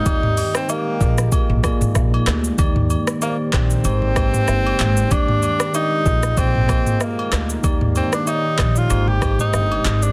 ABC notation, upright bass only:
X:1
M:4/4
L:1/16
Q:"Swing 16ths" 1/4=95
K:Eb
V:1 name="Upright bass" clef=bass
E,,3 z3 B,,,2 z B,,, z A,,, B,,,2 D,,2 | E,,3 z3 B,,,2 A,,,4 G,,,2 A,,,2 | E,,3 z3 B,,,2 B,,,3 z3 D,,2 | E,,3 z3 B,,,2 A,,,4 G,,,2 A,,,2 |]